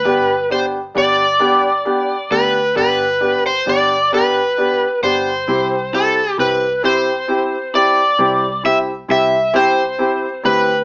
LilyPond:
<<
  \new Staff \with { instrumentName = "Electric slide guitar" } { \time 6/8 \key c \major \tempo 4. = 44 b'8 c''8 d''4. b'8 | b'8. c''16 d''8 b'4 c''8~ | c''8 a'8 b'8 c''4 d''8~ | d''8 e''8 e''8 c''4 b'8 | }
  \new Staff \with { instrumentName = "Felt piano" } { \time 6/8 \key c \major <b d' g'>8 <b d' g'>8 <b d' g'>8 <b d' g'>8 <b d' g'>8 <b d' g'>8 | <b d' g'>8 <b d' g'>8 <b d' g'>8 <b d' g'>8 <b d' g'>8 <b d' g'>8 | <c' e' g'>8 <c' e' g'>8 <c' e' g'>8 <c' e' g'>8 <c' e' g'>8 <c' e' g'>8 | <c' e' g'>8 <c' e' g'>8 <c' e' g'>8 <c' e' g'>8 <c' e' g'>8 <c' e' g'>8 | }
  \new Staff \with { instrumentName = "Fingered electric bass" } { \clef bass \time 6/8 \key c \major g,,4 g,,4. d,8 | g,,4 g,,4. g,,8 | c,4 c,4. g,,8 | c,4 c,4. d,8 | }
>>